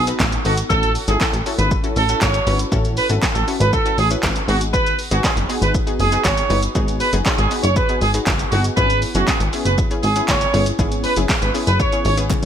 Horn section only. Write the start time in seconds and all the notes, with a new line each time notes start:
0.45 F#4
0.70 A4
1.08 G#4
1.20 A4
1.58 B4
1.97 A4
2.21 C#5
2.97 B4
3.35 A4
3.60 B4
3.73 A4
3.98 G#4
4.49 F#4
4.73 B4
5.11 F#4
5.24 G#4
5.62 B4
5.99 G#4
6.25 C#5
7.00 B4
7.38 G#4
7.63 C#5
7.76 B4
8.01 G#4
8.51 F#4
8.77 B4
9.15 F#4
9.28 G#4
9.65 B4
10.03 G#4
10.28 C#5
11.04 B4
11.42 B4
11.67 B4
11.79 C#5
12.05 C#5